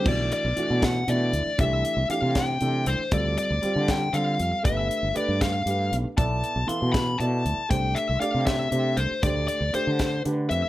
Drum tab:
CC |x-----|------|------|------|
HH |-xxxxx|xxxxxx|xxxxxx|xxxxxx|
SD |---o--|---o--|---o--|---o--|
BD |o--o--|o--o--|o--o--|o--o--|

CC |------|------|------|
HH |xxxxxx|xxxxxx|xxxxxx|
SD |---o--|---o--|---o--|
BD |o--o--|o--o--|o--o--|